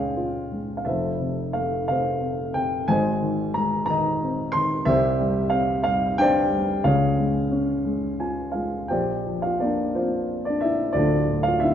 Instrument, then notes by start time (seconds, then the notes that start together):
grand piano
Already playing: C#2 C#3 G#3 C#4 G#4 C#5 F5 G5 G#5
0.17 F4
0.52 G#3
0.77 F5
0.85 F1 F2 A4 C5 E5
1.20 C3
1.53 A3 F5
1.88 C3 A4 C5 F5
2.21 C4
2.54 C3 G5
2.88 G#1 G#2 C5 D#5 G#5
3.22 D#3
3.54 G#3 A#5
3.86 D#3 A#5
3.90 D#5
4.22 C4
4.52 D#3 C6
4.85 C2 C3 G4 C5 E5
5.19 G3
5.50 C4 F5
5.84 G3 F5
6.17 D4 C5 D5 G5
6.50 G3
6.84 C#2 C#3 G#4 C#5 F5
7.19 G#3
7.51 C#4
7.85 G#3
8.20 F4 G#5
8.52 G#3 F4 F5
8.88 A#1 A#2 G4 C5 D5 G5
9.26 F3
9.42 F4 F5
9.60 A#3 D4 D5
9.95 F3 C4 F4 C5
10.45 D4 D5
10.61 E4 E5
10.93 D1 D2 D5
10.97 D4 F4 A4
11.28 A2
11.43 F5
11.48 F4
11.60 D3 E4 E5